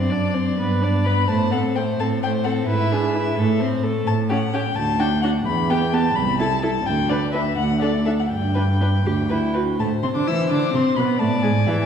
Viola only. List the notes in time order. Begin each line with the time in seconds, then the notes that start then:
Already playing: C4
0.12 D4
0.34 C4
0.58 B3
0.82 D4
1.06 B3
1.29 A3
1.54 C4
1.77 A3
2.00 C4
2.23 A3
2.46 C4
2.69 E4
2.93 D4
3.15 E4
3.39 A3
3.62 C4
3.84 A3
4.31 C#4
4.54 C#4
5.00 D4
5.24 D4
5.70 B3
5.93 B3
6.39 E4
6.62 E4
7.10 D4
7.34 D4
7.83 D4
8.07 D4
8.56 D4
8.81 D4
9.06 G4
9.30 E4
9.55 F#4
9.79 A3
10.04 C4
10.15 D4
10.27 E4
10.50 D4
10.73 C4
10.97 B3
11.20 A3
11.44 G#3
11.67 E3